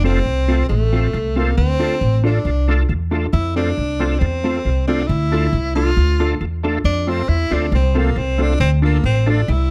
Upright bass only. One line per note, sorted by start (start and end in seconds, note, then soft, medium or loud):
0.00 0.19 F1 loud
0.26 0.63 C2 medium
0.69 1.07 A1 loud
1.14 1.51 C2 medium
1.57 1.95 D2 loud
2.01 2.39 A1 medium
2.45 2.82 C2 medium
2.89 3.27 E2 medium
3.33 3.70 F2 loud
3.78 4.15 C2 medium
4.21 4.58 E2 medium
4.65 5.02 C2 medium
5.09 5.46 D2 loud
5.53 5.90 C2 medium
5.97 6.34 D2 loud
6.41 6.78 E2 medium
6.84 7.22 F2 loud
7.28 7.48 E2 medium
7.51 7.69 D2 medium
7.72 8.09 C2 loud
8.16 8.53 C2 medium
8.60 8.97 D2 loud
9.04 9.41 A1 loud
9.48 9.71 C2 loud